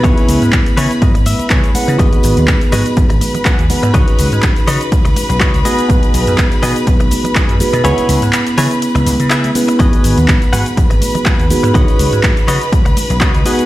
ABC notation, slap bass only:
X:1
M:4/4
L:1/16
Q:"Swing 16ths" 1/4=123
K:G#m
V:1 name="Slap bass" clef=bass
C,, z C,, G,, z2 C, z G,,2 z2 C, z2 C, | G,,, z G,,, D,, z2 G,, z G,,, G,,, z3 D,, z G,, | C,, z C,, G,, z2 C, z2 C,, z B,,, C, C,, z2 | B,,, z B,,, F,, z2 B,, z B,,, B,,, z3 F,, z B,, |
C,, z C,, G,, z2 C, z2 C,, C,, C,2 z3 | G,,, z G,,, D,, z2 G,, z G,,, G,,, z3 D,, z G,, | C,, z C,, G,, z2 C, z2 C,, z B,,, C, C,, z2 |]